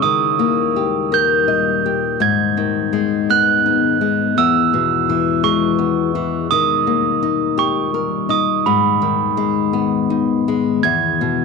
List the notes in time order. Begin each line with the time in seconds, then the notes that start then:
0.02 D#2 A#2 D#3 G3 D#6
0.39 A#3
0.76 G4
1.12 A#4 G6
1.48 D#5
1.86 G4
2.20 G#2 D#3 B3 G#6
2.57 D#3
2.93 G#3
3.30 B3 F#6
3.66 D#4
4.01 G#3
4.36 E2 B2 G#3 E6
4.74 B2
5.09 E3
5.43 G#3 C#6
5.79 B3
6.15 E3
6.49 D#2 A#2 D#3 G3 D#6
6.87 A#3
7.23 D#4
7.58 G4 C#6
7.94 A#4
8.29 D#4 D#6
8.66 G#2 D#3 B3 B5
9.02 D#3
9.37 G#3
9.73 B3
10.10 D#4
10.48 G#3
10.83 E2 B2 G#3 G#6
11.21 B2